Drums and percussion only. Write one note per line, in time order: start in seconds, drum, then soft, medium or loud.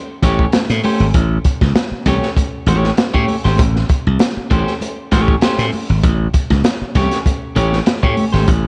0.22 kick medium
0.22 snare soft
0.22 closed hi-hat medium
0.22 muted conga medium
0.39 kick medium
0.52 snare loud
0.52 closed hi-hat medium
0.52 high conga medium
0.70 snare soft
0.70 closed hi-hat medium
0.83 open hi-hat medium
0.83 high conga medium
1.14 kick loud
1.14 closed hi-hat loud
1.14 muted conga medium
1.45 kick loud
1.45 closed hi-hat medium
1.61 kick medium
1.61 snare soft
1.76 snare loud
1.76 closed hi-hat medium
1.76 high conga medium
2.06 kick medium
2.06 snare soft
2.06 closed hi-hat medium
2.06 muted conga soft
2.06 low conga medium
2.23 snare soft
2.37 kick loud
2.37 closed hi-hat medium
2.37 muted conga medium
2.68 closed hi-hat medium
2.68 muted conga medium
2.68 low conga medium
2.84 snare soft
2.97 snare loud
2.97 closed hi-hat medium
2.97 high conga medium
3.14 kick medium
3.28 open hi-hat medium
3.28 high conga medium
3.45 snare soft
3.58 kick loud
3.58 closed hi-hat loud
3.58 muted conga medium
3.76 snare soft
3.89 kick loud
3.89 closed hi-hat medium
4.19 snare loud
4.19 closed hi-hat medium
4.19 high conga medium
4.50 kick medium
4.50 closed hi-hat medium
4.50 low conga medium
4.67 snare soft
4.81 closed hi-hat medium
4.81 muted conga medium
5.12 kick medium
5.12 snare soft
5.12 closed hi-hat medium
5.12 muted conga medium
5.28 kick loud
5.41 snare loud
5.41 closed hi-hat medium
5.41 high conga medium
5.59 snare soft
5.59 closed hi-hat medium
5.72 open hi-hat medium
5.72 high conga medium
6.03 kick loud
6.03 closed hi-hat loud
6.03 muted conga medium
6.34 kick medium
6.34 closed hi-hat medium
6.50 kick medium
6.50 snare soft
6.64 snare loud
6.64 closed hi-hat medium
6.64 high conga medium
6.95 kick medium
6.95 snare soft
6.95 closed hi-hat medium
6.95 muted conga soft
6.95 low conga medium
7.11 snare soft
7.11 closed hi-hat medium
7.26 kick medium
7.26 closed hi-hat medium
7.26 muted conga medium
7.56 closed hi-hat medium
7.56 muted conga medium
7.56 low conga medium
7.73 snare soft
7.86 snare loud
7.86 closed hi-hat medium
7.86 high conga medium
8.03 kick loud
8.17 open hi-hat medium
8.17 high conga medium
8.34 snare soft
8.48 kick loud
8.48 closed hi-hat loud
8.48 muted conga medium